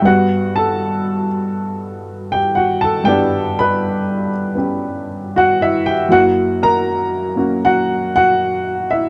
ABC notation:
X:1
M:4/4
L:1/8
Q:"Swing" 1/4=79
K:Glyd
V:1 name="Upright piano"
[Ff] [Aa]2 z3 (3[Gg] [Ff] [Aa] | [Gg] [Bb]2 z3 (3[Ff] [Ee] [Gg] | [Ff] [^A^a]3 [Ff] [Ff]2 [Ee] |]
V:2 name="Upright piano"
[G,,G,B,]8 | [G,,G,B,D]4 [B,CG]4 | [F,,F,^A,E]3 [A,CF]4- [A,CF] |]